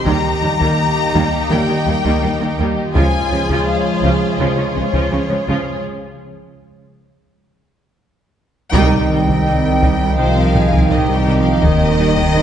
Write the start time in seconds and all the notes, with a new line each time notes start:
Already playing: G4
0.05 D#2 D#3 G3 A#3 D#4 G4 D#5 A#5, taiko
0.42 D#2 D#3 G3
0.59 D#3 G3 A#3, taiko
1.14 D#2 D#3 G3 A#3, taiko
1.50 D#2 D#3 G3 A#3 G5
1.68 D#3 G3 D#4
1.87 D#2 D#3 G3
2.04 D#3 G3 A#3, taiko
2.22 D#2 D#3 G3
2.40 D#3 G3 A#3
2.59 D#2 D#3 G3 A#3
2.95 C#2 C#3 F3 G#3 F4 G#4 C#5 G#5, taiko
3.31 C#2 C#3 F3 G#3
3.49 C#3 F3 F4, taiko
3.67 F5
4.02 C#2 C#3 F3 F4, taiko
4.39 C#2 C#3 F3 F4 C#5
4.57 C#3 F3 C#4
4.75 C#2 C#3 F3 G#3
4.93 C#3 F3 F4, taiko
5.11 C#2 C#3 F3 C#4
5.29 C#3 F3 G#3
5.47 C#2 C#3 F3 F4
8.72 C2 C3 D#3 G3 C4 D#4 D#5 G5, taiko
8.92 taiko low-mid
9.10 D#3 G3 D#4
9.28 C3, taiko
9.45 C2 G3 D#4
9.82 C3 G3 D#4, taiko
10.17 C2 C3 F3 G3 D#4 C5 F5
10.37 C4
10.54 D#3 D#4 G#4, taiko low-mid
10.73 C3, taiko
10.89 C2 D#3 G3 D#4 G4 D#5, taiko low-mid
11.09 G3 G5
11.14 G3
11.27 C3 G3 D#4
11.38 F3 F5
11.61 D#1 D#2 D#3 G3 A#3 D#4 D#5, taiko
11.99 G3 D#4
12.18 D#3, taiko
12.35 D#2 G3 D#4 C5